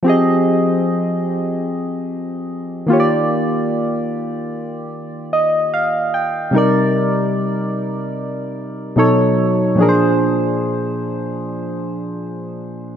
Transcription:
\new Staff \with { instrumentName = "Synth keys" } { \time 4/4 \key f \dorian \tempo 4 = 74 << { r1 | r2 r8 ees''8 f''8 g''8 | r1 | r1 | } \\ { <f c' g' aes' ees''>2.~ <f c' g' aes' ees''>8 <ees bes f' g' des'' d''>8~ | <ees bes f' g' des'' d''>2.~ <ees bes f' g' des'' d''>8 r8 | <c g ees' bes' d''>2. <b, fis dis' a' cis''>4 | <bes, f d' aes' bes' c''>1 | } >> }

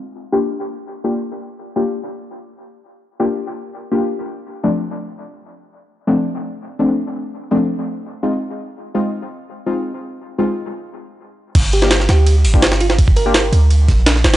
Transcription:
<<
  \new Staff \with { instrumentName = "FM electric piano" } { \time 4/4 \key g \minor \tempo 4 = 167 r1 | r1 | r1 | r1 |
r1 | r1 | r1 | r1 |
r8 g'8 r8 g'8. r4 r16 f'16 f'16 | r8 bes'4. r2 | }
  \new Staff \with { instrumentName = "Synth stab" } { \time 4/4 \key g \minor r8. <bes d' f' g'>16 r4. r16 <bes d' f' g'>16 r4 | r8. <bes d' f' g'>16 r2. | r8. <bes d' f' g'>16 r4. r16 <bes d' f' g'>16 r4 | r8. <f a c' d'>16 r2. |
r8. <f a c' d'>16 r4. r16 <f a c' d'>16 r4 | r8. <f a c' d'>16 r4. r16 <aes c' ees' f'>16 r4 | r8. <aes c' ees' f'>16 r4. r16 <aes c' ees' f'>16 r4 | r8. <aes c' ees' f'>16 r2. |
r8. <bes d' f' g'>16 r4. r16 <bes d' f' g'>16 r4 | r8. <bes d' f' g'>16 r2. | }
  \new Staff \with { instrumentName = "808-style bass" } { \clef bass \time 4/4 \key g \minor r1 | r1 | r1 | r1 |
r1 | r1 | r1 | r1 |
g,,4. d,4 g,,4.~ | g,,4. d,4 bes,,4 g,,8 | }
  \new DrumStaff \with { instrumentName = "Drums" } \drummode { \time 4/4 r4 r4 r4 r4 | r4 r4 r4 r4 | r4 r4 r4 r4 | r4 r4 r4 r4 |
r4 r4 r4 r4 | r4 r4 r4 r4 | r4 r4 r4 r4 | r4 r4 r4 r4 |
<cymc bd cymr>8 cymr16 sn16 <cymr sn>16 sn16 <cymr sn>8 cymr8 hho16 bd16 <cymr sn>16 sn16 cymr16 sn16 | <bd cymr>16 bd16 cymr8 <cymr sn>8 cymr8 cymr8 <bd cymr>8 <cymr sn>16 sn16 <cymr sn>16 <cymr sn>16 | }
>>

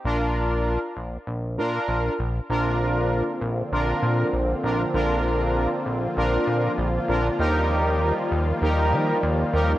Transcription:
<<
  \new Staff \with { instrumentName = "Analog polysynth" } { \time 4/4 \key bes \mixolydian \tempo 4 = 98 <d' f' bes'>4 r4. <d' f' bes'>4 r8 | <d' f' bes'>4 r4 <d' f' bes'>4 r8 <d' f' bes'>8 | <d' f' bes'>4 r4 <d' f' bes'>4 r8 <d' f' bes'>8 | <ees' g' bes'>4 r4 <ees' g' bes'>4 r8 <ees' g' bes'>8 | }
  \new Staff \with { instrumentName = "Analog synth pad" } { \clef bass \time 4/4 \key bes \mixolydian << { r1 | <f f'>1~ | <f f'>1~ | <f f'>1 | } \\ { r1 | <d bes c'>1~ | <d bes c'>1 | <ees g>1 | } >> }
  \new Staff \with { instrumentName = "Analog synth bass" } { \clef bass \time 4/4 \key bes \mixolydian bes,,4~ bes,,16 r16 bes,,8 bes,,8 bes,8 bes,,8 bes,,8 | bes,,4~ bes,,16 r16 bes,,8 bes,,8 bes,8 bes,,8 bes,,8 | bes,,4~ bes,,16 r16 bes,,8 bes,,8 bes,8 bes,,8 bes,,8 | ees,4~ ees,16 r16 ees,8 ees,8 ees8 ees,8 ees,8 | }
>>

